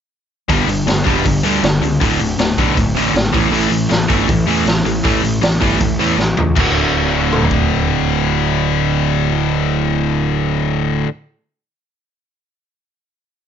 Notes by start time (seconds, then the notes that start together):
0.49 G1 G2 D3 G3, kick, open hi-hat
0.66 G1 G2 D3, open hi-hat
0.86 G1 G2 D3, snare, open hi-hat
1.06 E1 G2 D3 G3, kick, open hi-hat
1.25 G1 G2 D3, kick, open hi-hat
1.43 D2 G2 D3 G3, open hi-hat
1.63 G1 G2 D3, snare, open hi-hat
1.81 C#2 G2 D3, open hi-hat
2.01 D1 D2 A2 D3, kick, open hi-hat
2.19 D1 D2 A2, open hi-hat
2.38 D1 D2 A2, snare, open hi-hat
2.58 B1 D2 A2 D3, kick, open hi-hat
2.77 D1 D2 A2, kick, open hi-hat
2.94 A1 D2 A2 D3, open hi-hat
3.13 G#1 D2 A2, snare, open hi-hat
3.33 A1 A2 E3 A3, kick, open hi-hat
3.51 A1 A2 E3 A3, open hi-hat
3.69 A1 A2 E3, open hi-hat
3.89 A1 A2 E3, snare, open hi-hat
4.08 G1 A2 E3 A3, kick, open hi-hat
4.28 A1 A2 E3, kick, open hi-hat
4.46 E2 A2 E3 A3, open hi-hat
4.65 A1 A2 E3, snare, open hi-hat
4.84 A1 A2 E3, open hi-hat
5.03 A1 A2 E3 A3, kick, open hi-hat
5.23 A1 A2 E3, open hi-hat
5.42 A1 A2 E3, snare, open hi-hat
5.61 G1 A2 E3 A3, kick, open hi-hat
5.79 A1 A2 E3, kick, open hi-hat
5.99 E2 A2 E3 A3, open hi-hat
6.17 A1 A2 E3, snare
6.37 C#2 A2 E3, floor tom
6.56 D1 D2 A2 D3 A3, kick, crash
6.61 F#4
7.33 mid tom
7.42 floor tom
7.51 kick